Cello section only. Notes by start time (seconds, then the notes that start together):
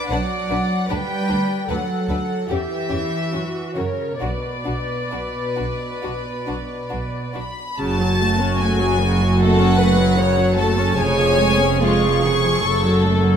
Already playing: D4
0.11 F#3
0.91 G3
1.71 F#3
2.50 E3
3.77 C#3
4.23 B2
7.79 F#2
11.00 F2
12.66 F#2